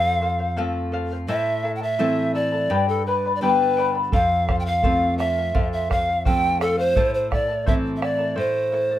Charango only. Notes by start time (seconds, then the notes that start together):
Already playing: A4 C5 F5
0.21 A4 C5 F5
0.39 C5 F5
0.56 A4 C5 F5
0.92 A4 C5 F5
1.11 C5 F5
1.28 E4 A4 C5 E5 A5
1.63 E4 A4 E5 A5
1.81 E4 A4 A5
1.99 E4 A4 C5 E5 A5
2.35 E4 A4 E5 A5
2.52 E4 A4 A5
2.70 G4 B4 D5 G5 B5
3.07 B4 D5 G5 B5
3.26 B4 D5 B5
3.42 G4 B4 D5 G5 B5
3.77 B4 D5 G5 B5
3.95 B4 D5 B5
4.12 A4 C5 F5
4.48 A4 C5 F5
4.66 C5 F5
4.83 A4 C5 F5
5.18 A4 C5 F5
5.37 C5 F5
5.54 A4 C5 F5
5.89 A4 C5 F5
6.09 C5 F5
6.25 A4 C5 F5
6.60 A4 C5 F5
6.78 C5 F5
6.96 E4 A4 C5 E5 A5
7.31 E4 A4 E5 A5
7.48 E4 A4 A5
7.66 E4 A4 C5 E5 A5
8.02 E4 A4 E5 A5
8.18 E4 A4 A5
8.35 E4 A4 C5 E5 A5
8.72 E4 A4 E5 A5
8.91 E4 A4 A5